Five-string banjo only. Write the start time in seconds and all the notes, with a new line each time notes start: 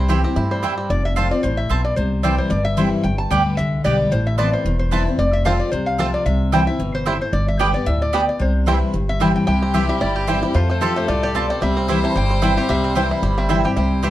Already playing: C4 E4
0.09 G4
0.24 C4
0.36 E4
0.51 G3
0.63 C4
0.78 G3
5.46 A3 C4 F4
5.99 A3 C4 F4
6.53 G3 C4 E4
7.07 G3 C4 E4
7.60 G3 B3 D4
8.14 G3 B3 D4
8.68 G3 C4 E4
9.21 G3 C4 E4
9.47 E4
9.62 C4
9.74 G4
9.89 G3
10.01 E4
10.16 G4
10.28 E4
10.43 G3
10.55 F4
10.70 A3
10.81 G4
10.96 A3
11.08 F4
11.23 G4
11.35 F4
11.50 C4
11.62 G3
11.77 C4
11.89 G3
12.04 E4
12.16 G3
12.30 C4
12.42 E4
12.57 G4
12.69 G3
12.84 C4
12.96 G3
13.11 E4
13.23 G3
13.38 C4
13.50 E4
13.65 G4
13.76 E4
14.03 G4